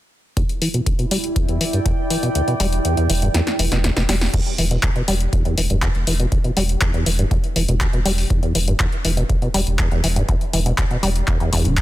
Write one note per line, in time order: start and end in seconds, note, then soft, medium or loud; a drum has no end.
0.37 0.44 E2 medium
0.37 4.34 E4 medium
0.37 kick loud
0.37 closed hi-hat medium
0.49 closed hi-hat soft
0.62 0.69 E3 medium
0.62 open hi-hat medium
0.74 0.81 B2 medium
0.74 closed hi-hat soft
0.83 0.93 D2 medium
0.83 4.34 D5 medium
0.83 kick loud
0.83 closed hi-hat medium
0.97 1.06 B2 medium
0.97 4.34 G5 medium
0.97 closed hi-hat soft
1.11 1.18 G3 loud
1.11 open hi-hat loud
1.24 closed hi-hat soft
1.36 1.46 E2 medium
1.36 kick loud
1.36 closed hi-hat medium
1.48 1.59 E2 medium
1.48 closed hi-hat soft
1.61 1.65 E3 medium
1.61 open hi-hat loud
1.73 1.80 G2 medium
1.73 closed hi-hat soft
1.86 1.93 E2 loud
1.86 kick loud
1.86 closed hi-hat medium
2.10 2.17 E3 medium
2.10 open hi-hat medium
2.23 2.30 B2 medium
2.23 closed hi-hat soft
2.35 2.42 D2 medium
2.35 closed hi-hat medium
2.48 2.54 B2 medium
2.48 closed hi-hat soft
2.60 2.79 E1 medium
2.60 2.67 G3 loud
2.60 open hi-hat loud
2.73 closed hi-hat soft
2.85 2.95 E2 medium
2.85 closed hi-hat medium
2.97 3.07 E2 medium
2.97 closed hi-hat soft
3.10 3.29 E1 medium
3.10 3.14 E3 medium
3.10 open hi-hat loud
3.22 3.29 G2 medium
3.22 closed hi-hat soft
3.34 3.41 E2 loud
3.34 snare medium
3.34 closed hi-hat medium
3.47 snare medium
3.47 closed hi-hat soft
3.59 3.69 E1 loud
3.59 3.66 E3 medium
3.59 open hi-hat loud
3.72 3.91 E1 loud
3.72 3.79 B2 medium
3.72 snare medium
3.72 closed hi-hat medium
3.84 3.91 D2 medium
3.84 snare medium
3.84 closed hi-hat medium
3.97 4.06 E1 medium
3.97 4.03 B2 medium
3.97 snare medium
4.09 4.28 E1 medium
4.09 4.16 G3 medium
4.09 snare medium
4.09 open hi-hat loud
4.21 snare medium
4.21 open hi-hat medium
4.34 4.40 E2 loud
4.34 kick loud
4.34 closed hi-hat medium
4.34 crash medium
4.46 closed hi-hat soft
4.58 4.77 E1 loud
4.58 4.65 E3 medium
4.58 open hi-hat medium
4.71 4.78 B2 medium
4.71 closed hi-hat medium
4.83 4.90 D2 medium
4.83 kick loud
4.83 clap loud
4.83 closed hi-hat medium
4.96 5.02 B2 medium
4.96 closed hi-hat soft
5.08 5.27 E1 medium
5.08 5.15 G3 loud
5.08 open hi-hat loud
5.20 closed hi-hat soft
5.33 5.43 E2 medium
5.33 kick loud
5.33 closed hi-hat medium
5.45 5.55 E2 medium
5.45 closed hi-hat soft
5.58 5.67 E1 loud
5.58 5.62 E3 medium
5.58 open hi-hat loud
5.70 5.89 E1 loud
5.70 5.77 G2 medium
5.70 closed hi-hat medium
5.82 5.89 E2 loud
5.82 kick loud
5.82 clap loud
5.82 closed hi-hat medium
5.95 6.04 E1 medium
5.95 closed hi-hat soft
6.07 6.26 E1 medium
6.07 6.14 E3 medium
6.07 open hi-hat loud
6.20 6.26 B2 medium
6.20 closed hi-hat medium
6.32 6.39 D2 medium
6.32 kick loud
6.32 closed hi-hat medium
6.44 6.51 B2 medium
6.44 closed hi-hat soft
6.57 6.76 E1 medium
6.57 6.64 G3 loud
6.57 open hi-hat medium
6.69 closed hi-hat medium
6.81 6.92 E2 medium
6.81 kick loud
6.81 clap loud
6.81 closed hi-hat medium
6.94 7.04 E2 medium
6.94 closed hi-hat soft
7.06 7.25 E1 medium
7.06 7.10 E3 medium
7.06 open hi-hat loud
7.19 7.26 G2 medium
7.19 closed hi-hat medium
7.31 7.38 E2 loud
7.31 kick loud
7.31 closed hi-hat medium
7.44 closed hi-hat soft
7.56 7.66 E1 loud
7.56 7.63 E3 medium
7.56 open hi-hat loud
7.68 7.87 E1 loud
7.68 7.75 B2 medium
7.68 closed hi-hat medium
7.81 7.88 D2 medium
7.81 kick loud
7.81 clap loud
7.81 closed hi-hat soft
7.93 8.03 E1 medium
7.93 8.00 B2 medium
7.93 closed hi-hat soft
8.05 8.25 E1 medium
8.05 8.12 G3 loud
8.05 open hi-hat loud
8.18 open hi-hat medium
8.30 8.41 E2 medium
8.30 kick loud
8.30 closed hi-hat soft
8.43 8.53 E2 medium
8.43 closed hi-hat soft
8.55 8.74 E1 medium
8.55 8.59 E3 medium
8.55 open hi-hat loud
8.67 8.74 G2 medium
8.67 closed hi-hat soft
8.80 8.87 E2 loud
8.80 kick loud
8.80 clap loud
8.80 closed hi-hat soft
8.92 closed hi-hat soft
9.05 9.24 E1 medium
9.05 9.12 E3 medium
9.05 open hi-hat loud
9.17 9.24 B2 medium
9.17 closed hi-hat soft
9.29 9.36 D2 medium
9.29 kick loud
9.29 closed hi-hat soft
9.42 9.49 B2 medium
9.42 closed hi-hat soft
9.54 9.64 E1 loud
9.54 9.61 G3 loud
9.54 open hi-hat loud
9.67 9.86 E1 loud
9.67 closed hi-hat soft
9.79 9.89 E2 medium
9.79 kick loud
9.79 clap loud
9.79 closed hi-hat soft
9.91 10.01 E1 medium
9.91 10.02 E2 medium
9.91 closed hi-hat soft
10.04 10.23 E1 medium
10.04 10.08 E3 medium
10.04 open hi-hat loud
10.16 10.23 G2 medium
10.16 closed hi-hat soft
10.29 10.35 E2 loud
10.29 kick loud
10.29 closed hi-hat soft
10.41 closed hi-hat soft
10.53 10.72 E1 medium
10.53 10.60 E3 medium
10.53 open hi-hat loud
10.66 10.73 B2 medium
10.66 closed hi-hat soft
10.78 10.85 D2 medium
10.78 kick loud
10.78 clap loud
10.78 closed hi-hat soft
10.91 10.97 B2 medium
10.91 closed hi-hat soft
11.03 11.22 E1 medium
11.03 11.10 G3 loud
11.03 open hi-hat loud
11.16 closed hi-hat soft
11.28 11.38 E2 medium
11.28 kick loud
11.28 clap medium
11.28 closed hi-hat soft
11.40 11.50 E2 medium
11.40 closed hi-hat soft
11.52 11.62 E1 loud
11.52 11.66 E2 medium
11.52 open hi-hat loud
11.65 11.82 D1 medium
11.65 11.79 D3 loud
11.65 closed hi-hat soft
11.77 11.82 E2 medium
11.77 kick loud
11.77 clap loud
11.77 closed hi-hat soft